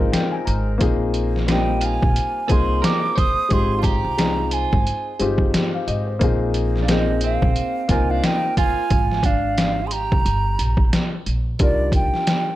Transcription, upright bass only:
0, 0, Header, 1, 2, 480
1, 0, Start_track
1, 0, Tempo, 674157
1, 580, Time_signature, 4, 2, 24, 8
1, 8941, End_track
2, 0, Start_track
2, 0, Title_t, "Upright bass"
2, 0, Program_c, 0, 32
2, 337, Note_on_c, 0, 32, 99
2, 549, Note_off_c, 0, 32, 0
2, 579, Note_on_c, 0, 34, 100
2, 1412, Note_off_c, 0, 34, 0
2, 1443, Note_on_c, 0, 34, 92
2, 1529, Note_off_c, 0, 34, 0
2, 1780, Note_on_c, 0, 36, 93
2, 1991, Note_off_c, 0, 36, 0
2, 2499, Note_on_c, 0, 32, 103
2, 2835, Note_off_c, 0, 32, 0
2, 2880, Note_on_c, 0, 36, 84
2, 3303, Note_off_c, 0, 36, 0
2, 3365, Note_on_c, 0, 32, 95
2, 3450, Note_off_c, 0, 32, 0
2, 3703, Note_on_c, 0, 31, 85
2, 3913, Note_off_c, 0, 31, 0
2, 4183, Note_on_c, 0, 32, 87
2, 4392, Note_off_c, 0, 32, 0
2, 4424, Note_on_c, 0, 34, 104
2, 5255, Note_off_c, 0, 34, 0
2, 5283, Note_on_c, 0, 34, 97
2, 5369, Note_off_c, 0, 34, 0
2, 5619, Note_on_c, 0, 36, 88
2, 5831, Note_off_c, 0, 36, 0
2, 6342, Note_on_c, 0, 32, 101
2, 7174, Note_off_c, 0, 32, 0
2, 7206, Note_on_c, 0, 36, 87
2, 7290, Note_off_c, 0, 36, 0
2, 7301, Note_on_c, 0, 31, 96
2, 7512, Note_off_c, 0, 31, 0
2, 7539, Note_on_c, 0, 34, 94
2, 7751, Note_off_c, 0, 34, 0
2, 8020, Note_on_c, 0, 34, 88
2, 8231, Note_off_c, 0, 34, 0
2, 8259, Note_on_c, 0, 36, 90
2, 8595, Note_off_c, 0, 36, 0
2, 8941, End_track
0, 0, End_of_file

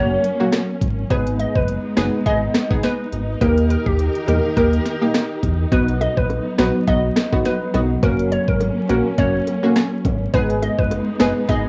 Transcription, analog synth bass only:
0, 0, Header, 1, 2, 480
1, 0, Start_track
1, 0, Key_signature, 5, "minor"
1, 0, Tempo, 576923
1, 919, Time_signature, 4, 2, 24, 8
1, 9725, End_track
2, 0, Start_track
2, 0, Title_t, "Analog synth bass"
2, 0, Program_c, 0, 38
2, 0, Note_on_c, 0, 30, 99
2, 147, Note_off_c, 0, 30, 0
2, 679, Note_on_c, 0, 32, 95
2, 866, Note_off_c, 0, 32, 0
2, 920, Note_on_c, 0, 32, 105
2, 1212, Note_off_c, 0, 32, 0
2, 1295, Note_on_c, 0, 30, 93
2, 1482, Note_off_c, 0, 30, 0
2, 1639, Note_on_c, 0, 30, 88
2, 1744, Note_off_c, 0, 30, 0
2, 1880, Note_on_c, 0, 32, 94
2, 2067, Note_off_c, 0, 32, 0
2, 2599, Note_on_c, 0, 32, 91
2, 2787, Note_off_c, 0, 32, 0
2, 2839, Note_on_c, 0, 39, 105
2, 3131, Note_off_c, 0, 39, 0
2, 3215, Note_on_c, 0, 39, 100
2, 3402, Note_off_c, 0, 39, 0
2, 3559, Note_on_c, 0, 40, 93
2, 3664, Note_off_c, 0, 40, 0
2, 3800, Note_on_c, 0, 39, 102
2, 3987, Note_off_c, 0, 39, 0
2, 4519, Note_on_c, 0, 40, 90
2, 4706, Note_off_c, 0, 40, 0
2, 4759, Note_on_c, 0, 35, 107
2, 5052, Note_off_c, 0, 35, 0
2, 5135, Note_on_c, 0, 34, 88
2, 5322, Note_off_c, 0, 34, 0
2, 5479, Note_on_c, 0, 34, 89
2, 5584, Note_off_c, 0, 34, 0
2, 5719, Note_on_c, 0, 35, 91
2, 5907, Note_off_c, 0, 35, 0
2, 6440, Note_on_c, 0, 35, 94
2, 6627, Note_off_c, 0, 35, 0
2, 6680, Note_on_c, 0, 30, 106
2, 6972, Note_off_c, 0, 30, 0
2, 7056, Note_on_c, 0, 32, 99
2, 7242, Note_off_c, 0, 32, 0
2, 7400, Note_on_c, 0, 34, 94
2, 7505, Note_off_c, 0, 34, 0
2, 7640, Note_on_c, 0, 30, 93
2, 7827, Note_off_c, 0, 30, 0
2, 8359, Note_on_c, 0, 32, 98
2, 8546, Note_off_c, 0, 32, 0
2, 8599, Note_on_c, 0, 32, 110
2, 8892, Note_off_c, 0, 32, 0
2, 8975, Note_on_c, 0, 30, 87
2, 9162, Note_off_c, 0, 30, 0
2, 9321, Note_on_c, 0, 30, 95
2, 9425, Note_off_c, 0, 30, 0
2, 9560, Note_on_c, 0, 32, 92
2, 9725, Note_off_c, 0, 32, 0
2, 9725, End_track
0, 0, End_of_file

